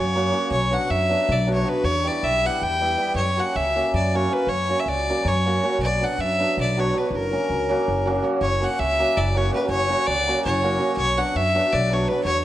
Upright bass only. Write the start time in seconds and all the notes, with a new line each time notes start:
Already playing: F#2
0.51 B1
0.90 F#2
1.29 B1
1.84 E2
2.23 B1
2.62 E2
3.15 F#2
3.56 C#2
3.94 F#2
4.47 F#2
4.86 C#2
5.25 F#2
5.79 B1
6.18 F#2
6.58 B1
7.11 F#1
7.50 C#2
7.88 F#1
8.41 F#1
8.79 C#2
9.17 F#1
9.69 F#1
10.08 C#2
10.46 F#1
10.97 B1
11.35 F#2
11.73 B1
12.25 E2